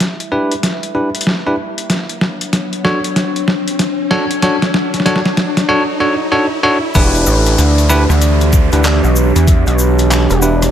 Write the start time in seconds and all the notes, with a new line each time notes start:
Already playing: G3 E4 E5, riser
0.00 snare, closed hi-hat
0.20 closed hi-hat
0.32 D4 E4 G4 B4
0.52 closed hi-hat
0.63 snare, closed hi-hat
0.83 closed hi-hat
0.95 D4 E4 G4 B4
1.15 closed hi-hat
1.21 closed hi-hat
1.27 snare
1.46 D4 E4 G4 B4
1.78 closed hi-hat
1.90 F#3 D4 C#5, snare, closed hi-hat
2.09 closed hi-hat
2.21 snare
2.41 closed hi-hat
2.53 snare, closed hi-hat
2.73 closed hi-hat
2.84 D4 F#4 A4 C#5, snare
3.04 closed hi-hat
3.16 snare, closed hi-hat
3.36 closed hi-hat
3.48 snare
3.68 closed hi-hat
3.79 snare, closed hi-hat
4.11 D4 F#4 A4 C#5, snare
4.31 closed hi-hat
4.42 D4 F#4 A4 C#5, snare, closed hi-hat
4.62 snare, closed hi-hat
4.74 snare
4.94 snare, closed hi-hat
5.00 snare
5.06 D4 F#4 A4 C#5, snare, closed hi-hat
5.16 snare
5.26 snare
5.37 snare, closed hi-hat
5.57 snare, closed hi-hat
5.69 D4 F#4 A4 C#5
6.00 D4 F#4 A4 C#5
6.32 D4 F#4 A4 C#5
6.63 D4 F#4 A4 C#5
6.95 E1 E3 D4 E4 G4 B4, kick, closed hi-hat, downlifter, shaker
7.02 closed hi-hat
7.15 closed hi-hat, shaker
7.26 A1, shaker
7.46 closed hi-hat, shaker
7.58 D2, closed hi-hat, shaker
7.78 closed hi-hat, shaker
7.89 D4 E4 G4 B4, cross-stick, shaker
8.09 D2, cross-stick, shaker
8.21 closed hi-hat, shaker
8.41 closed hi-hat, shaker
8.53 kick, shaker
8.72 D2 D4 E4 G4 B4, closed hi-hat, shaker
8.84 clap, closed hi-hat, shaker
9.04 B1, shaker
9.16 shaker
9.36 E2, closed hi-hat, shaker
9.47 kick, closed hi-hat, shaker
9.67 B1, closed hi-hat, shaker
9.79 shaker
9.99 closed hi-hat, shaker
10.11 clap, closed hi-hat, shaker
10.30 E1, closed hi-hat, shaker
10.42 D4 E4 G4 B4, shaker
10.62 cross-stick, closed hi-hat, shaker